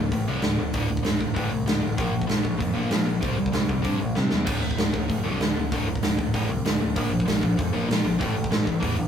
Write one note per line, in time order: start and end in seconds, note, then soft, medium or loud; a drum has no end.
0.00 0.11 D2 medium
0.00 0.11 A2 medium
0.12 0.25 A1 medium
0.12 0.26 D2 medium
0.12 0.26 A2 medium
0.12 kick medium
0.12 open hi-hat soft
0.27 0.40 C2 medium
0.27 0.42 D2 medium
0.27 0.43 A2 medium
0.27 0.43 D3 medium
0.42 0.56 D2 medium
0.42 0.57 D2 medium
0.42 0.57 A2 medium
0.42 snare loud
0.42 open hi-hat soft
0.58 0.71 D1 medium
0.58 0.73 D2 medium
0.58 0.73 A2 medium
0.73 1.00 D1 medium
0.73 0.88 D2 medium
0.73 0.88 A2 medium
0.73 0.89 D3 medium
0.73 kick loud
0.73 open hi-hat soft
0.89 1.02 D2 medium
0.89 1.02 A2 medium
0.97 kick medium
1.03 1.18 D1 medium
1.03 1.18 D2 medium
1.03 1.18 A2 medium
1.03 snare medium
1.03 open hi-hat soft
1.19 1.34 D1 medium
1.19 1.33 D2 medium
1.19 1.33 A2 medium
1.19 kick medium
1.34 1.49 A1 medium
1.34 1.49 D2 medium
1.34 1.49 A2 medium
1.34 1.50 D3 medium
1.34 kick medium
1.34 open hi-hat medium
1.50 1.65 C2 medium
1.50 1.65 D2 medium
1.50 1.65 A2 medium
1.66 1.80 D2 medium
1.66 1.81 D2 medium
1.66 1.80 A2 medium
1.66 snare loud
1.66 open hi-hat medium
1.81 1.96 A1 medium
1.81 1.96 D2 medium
1.81 1.96 A2 medium
1.97 2.25 A#1 medium
1.97 2.11 A#2 medium
1.97 2.12 F3 medium
1.97 2.13 A#3 medium
1.97 kick loud
1.97 open hi-hat medium
2.12 2.26 A#2 medium
2.12 2.26 F3 medium
2.22 kick medium
2.27 2.43 A#1 medium
2.27 2.41 A#2 medium
2.27 2.42 F3 medium
2.27 snare loud
2.27 open hi-hat soft
2.43 2.58 A#1 medium
2.43 2.57 A#2 medium
2.43 2.58 F3 medium
2.43 kick medium
2.58 2.74 F2 medium
2.58 2.72 A#2 medium
2.58 2.73 F3 medium
2.58 kick medium
2.58 open hi-hat soft
2.74 2.90 G1 medium
2.74 2.90 A#2 medium
2.74 2.90 F3 medium
2.74 2.90 A#3 medium
2.91 3.04 A#2 medium
2.91 3.05 A#2 medium
2.91 3.05 F3 medium
2.91 snare loud
2.91 open hi-hat soft
3.05 3.20 A#1 medium
3.05 3.21 A#2 medium
3.05 3.21 F3 medium
3.21 3.49 C2 medium
3.21 3.36 C3 medium
3.21 3.36 G3 medium
3.21 3.37 C4 medium
3.21 kick loud
3.21 open hi-hat soft
3.37 3.51 C3 medium
3.37 3.52 G3 medium
3.46 kick medium
3.52 3.67 C2 medium
3.52 3.68 C3 medium
3.52 3.68 G3 medium
3.52 snare medium
3.52 open hi-hat medium
3.69 3.83 C2 medium
3.69 3.81 C3 medium
3.69 3.81 G3 medium
3.69 kick medium
3.82 3.98 G2 medium
3.82 3.97 C3 medium
3.82 3.98 G3 medium
3.82 3.99 C4 loud
3.82 kick medium
3.82 open hi-hat soft
3.98 4.14 A#1 medium
3.98 4.14 C3 medium
3.98 4.14 G3 medium
4.15 4.30 C3 medium
4.15 4.30 G3 medium
4.15 snare medium
4.30 4.46 E2 medium
4.30 4.44 C3 medium
4.30 4.45 G3 medium
4.30 snare medium
4.45 4.74 D1 medium
4.45 4.60 D2 medium
4.45 4.61 A2 medium
4.45 4.61 D3 medium
4.45 kick loud
4.45 open hi-hat soft
4.45 crash medium
4.62 4.76 D2 medium
4.62 4.77 A2 medium
4.71 kick medium
4.77 4.92 D1 medium
4.77 4.92 D2 medium
4.77 4.92 A2 medium
4.77 snare loud
4.77 open hi-hat soft
4.93 5.07 D1 medium
4.93 5.07 D2 medium
4.93 5.07 A2 medium
4.93 kick medium
5.08 5.23 A1 medium
5.08 5.22 D2 medium
5.08 5.22 A2 medium
5.08 kick medium
5.08 open hi-hat soft
5.23 5.38 C2 loud
5.23 5.39 D2 medium
5.23 5.39 A2 medium
5.23 5.39 D3 medium
5.40 5.55 D2 medium
5.40 5.54 D2 medium
5.40 5.55 A2 medium
5.40 snare medium
5.40 open hi-hat soft
5.57 5.70 D1 medium
5.57 5.71 D2 medium
5.57 5.71 A2 medium
5.72 5.98 D1 medium
5.72 5.86 D2 medium
5.72 5.87 A2 medium
5.72 5.87 D3 medium
5.72 kick loud
5.72 open hi-hat soft
5.88 6.02 D2 medium
5.88 6.02 A2 medium
5.95 kick medium
6.02 6.16 D1 medium
6.02 6.16 D2 medium
6.02 6.16 A2 medium
6.02 snare loud
6.02 open hi-hat medium
6.17 6.32 D1 medium
6.17 6.32 D2 medium
6.17 6.32 A2 medium
6.17 kick medium
6.34 6.47 A1 medium
6.34 6.49 D2 medium
6.34 6.49 A2 loud
6.34 6.49 D3 medium
6.34 kick medium
6.34 open hi-hat soft
6.49 6.62 C2 loud
6.49 6.64 D2 medium
6.49 6.64 A2 medium
6.65 6.79 D2 medium
6.65 6.79 A2 medium
6.65 snare loud
6.65 open hi-hat medium
6.80 6.97 D1 medium
6.80 6.95 D2 medium
6.80 6.95 A2 medium
6.96 7.23 A#1 medium
6.96 7.10 A#2 medium
6.96 7.10 F3 medium
6.96 7.11 A#3 loud
6.96 kick medium
6.96 open hi-hat medium
7.11 7.25 A#2 medium
7.11 7.25 F3 medium
7.20 kick medium
7.26 7.40 A#1 medium
7.26 7.40 A#2 medium
7.26 7.41 F3 medium
7.26 snare loud
7.26 open hi-hat medium
7.41 7.56 A#1 medium
7.41 7.56 A#2 medium
7.41 7.57 F3 medium
7.41 kick medium
7.57 7.72 F2 medium
7.57 7.72 A#2 medium
7.57 7.72 F3 medium
7.57 kick loud
7.57 open hi-hat medium
7.73 7.87 G1 medium
7.73 7.86 A#2 medium
7.73 7.87 F3 medium
7.73 7.88 A#3 medium
7.88 8.03 A#2 medium
7.88 8.02 A#2 medium
7.88 8.03 F3 medium
7.88 snare loud
7.88 open hi-hat medium
8.04 8.18 A#1 medium
8.04 8.18 A#2 medium
8.04 8.18 F3 medium
8.19 8.47 A1 loud
8.19 8.33 A2 medium
8.19 8.34 E3 medium
8.19 8.35 A3 medium
8.19 kick loud
8.19 open hi-hat soft
8.34 8.49 A2 medium
8.34 8.50 E3 medium
8.44 kick medium
8.51 8.64 A1 medium
8.51 8.64 A2 medium
8.51 8.64 E3 medium
8.51 snare loud
8.51 open hi-hat medium
8.65 8.80 A1 medium
8.65 8.79 A2 medium
8.65 8.79 E3 medium
8.65 kick medium
8.80 8.96 E2 loud
8.80 8.95 A2 medium
8.80 8.96 E3 loud
8.80 8.96 A3 medium
8.80 kick medium
8.80 open hi-hat soft
8.96 9.08 G1 loud
8.96 9.08 A2 medium
8.96 9.08 E3 medium